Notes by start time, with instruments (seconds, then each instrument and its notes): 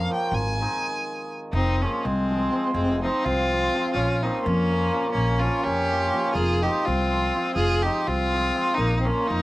Already playing: violin F5
0.10 hammered dulcimer F3 A#3 C#4 F4, violin G5
0.32 upright bass G#1, violin G#5
0.60 hammered dulcimer D#3 G#3 C4 D#4
1.53 upright bass F1, accordion C4, violin D#4
1.82 hammered dulcimer F3 G#3 C4 F4, accordion A#3, violin C#4
2.03 upright bass C2, accordion G#3, violin C4
2.30 hammered dulcimer F3 G#3 C4 F4
2.52 hammered dulcimer F3 G#3 C4 F4
2.73 upright bass F1, accordion G#3, violin C4
3.03 hammered dulcimer F3 G#3 C4 F4, accordion C4, violin D#4
3.25 upright bass C2, accordion C4, violin F4
3.52 hammered dulcimer F3 G#3 C4 F4
3.74 hammered dulcimer F3 G#3 C4 F4
3.93 upright bass A#1, accordion C#4, violin F4
4.22 hammered dulcimer F3 A#3 C#4 F4, accordion C4, violin D#4
4.43 upright bass F2, accordion A#3, violin C#4
4.72 hammered dulcimer F3 A#3 C#4 F4
4.92 hammered dulcimer F3 A#3 C#4 F4
5.11 upright bass A#1, accordion A#3, violin C#4
5.39 accordion C#4, violin F4
5.44 hammered dulcimer F3 A#3 C#4 F4
5.63 upright bass F2, accordion C#4, violin G4
5.91 hammered dulcimer F3 A#3 C#4 F4
6.13 hammered dulcimer F3 A#3 C#4 F4
6.32 upright bass F1, accordion F4, violin G#4
6.62 hammered dulcimer F3 G#3 C4 F4, accordion D#4, violin G4
6.85 upright bass C2, accordion C4, violin F4
7.12 hammered dulcimer F3 G#3 C4 F4
7.34 hammered dulcimer F3 G#3 C4 F4
7.56 upright bass F1, accordion F4, violin G#4
7.82 hammered dulcimer F3 G#3 C4, accordion D#4, violin G4
7.87 hammered dulcimer F4
8.06 upright bass C2, accordion C4, violin F4
8.34 hammered dulcimer F3 G#3 C4 F4
8.55 hammered dulcimer F3 G#3 C4 F4
8.75 upright bass A#1, accordion A#3, violin D#4
8.98 accordion C4, violin D#4
9.04 hammered dulcimer F3 A#3 C#4 F4, accordion A#3, violin C#4
9.27 upright bass F2, accordion A#3, violin D#4